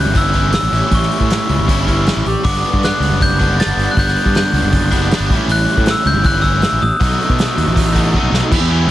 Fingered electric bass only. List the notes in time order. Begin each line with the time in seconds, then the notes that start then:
0.06 G1
0.63 A1
0.72 A1
0.91 A1
1.20 A2
1.49 C#2
1.58 G1
2.16 A1
2.26 A1
2.44 G1
2.73 G2
3.00 C#2
3.09 F#1
3.66 G1
3.77 G1
3.97 G1
4.25 G2
4.53 C#2
4.62 F#1
5.20 G1
5.30 A1
5.48 A1
5.77 A2
6.05 C#2
6.14 G1
6.72 A1
6.82 A1
7.01 B1
7.29 B2
7.57 D#2
7.66 A1
8.23 B1
8.32 B1
8.52 E2
8.60 E2
8.87 B1